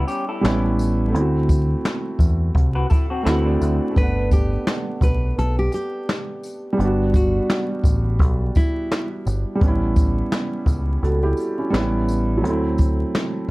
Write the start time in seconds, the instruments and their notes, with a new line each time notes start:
Already playing: felt piano G3 B3 C#4 E4
0.07 clean electric guitar C#4 G4, tambourine, shaker
0.29 clean electric guitar E4 A4
0.41 picked electric bass A1, felt piano G3 B3 C#4, snare, closed hi-hat
0.45 felt piano E4, clap
0.79 closed hi-hat, tambourine, shaker
1.08 felt piano A3 C4
1.14 picked electric bass D2, felt piano E4, closed hi-hat
1.20 felt piano F#4
1.49 kick, tambourine, shaker
1.85 snare, clap, closed hi-hat
2.19 picked electric bass E2, kick, tambourine, shaker
2.55 picked electric bass C2, kick, closed hi-hat
2.75 clean electric guitar F#4 B4
2.90 clean electric guitar E4 A4, kick, tambourine, shaker
3.10 clean electric guitar C4 F#4
3.23 picked electric bass D2, felt piano A3 C4 E4, clean electric guitar B3 E4, snare
3.27 felt piano F#4, clap, closed hi-hat
3.46 clean electric guitar A3 D4
3.61 picked electric bass D2, closed hi-hat, tambourine, shaker
3.90 felt piano A3
3.94 picked electric bass G1, felt piano B3, nylon-string guitar B4, kick, closed hi-hat
3.99 felt piano D4 F#5
4.31 nylon-string guitar G4, kick, tambourine, shaker
4.67 snare, clap, closed hi-hat
5.01 picked electric bass B1, nylon-string guitar B4, kick, tambourine, shaker
5.38 picked electric bass B1, nylon-string guitar A4, closed hi-hat
5.59 nylon-string guitar G4
5.72 nylon-string guitar G4, closed hi-hat, tambourine, shaker
6.09 snare, clap, closed hi-hat
6.44 closed hi-hat, tambourine, shaker
6.73 felt piano G3
6.77 picked electric bass G1, felt piano B3, closed hi-hat
6.81 felt piano D4
6.85 felt piano F#4
7.14 nylon-string guitar F#4, kick, tambourine, shaker
7.50 snare, clap, closed hi-hat
7.84 picked electric bass A1, kick, tambourine, shaker
8.19 picked electric bass B1, kick, closed hi-hat
8.55 nylon-string guitar E4, kick, closed hi-hat, tambourine, shaker
8.92 snare, clap, closed hi-hat
9.26 picked electric bass G1, tambourine, shaker
9.55 felt piano G3
9.59 picked electric bass A1, felt piano B3, kick, closed hi-hat
9.63 felt piano C#4 E4
9.96 kick, tambourine, shaker
10.32 snare, clap, closed hi-hat
10.66 picked electric bass C#2, kick, tambourine, shaker
11.03 picked electric bass C#2, felt piano F#4 A4, closed hi-hat
11.23 felt piano E4 G4
11.37 tambourine, shaker
11.58 felt piano C#4 E4
11.70 picked electric bass A1, felt piano G3 B3, snare
11.74 felt piano C#4 E4, clap, closed hi-hat
12.09 closed hi-hat, tambourine, shaker
12.38 felt piano F#3
12.42 picked electric bass D2, felt piano A3, closed hi-hat
12.46 felt piano C4 E4
12.78 kick, tambourine, shaker
13.15 snare, clap, closed hi-hat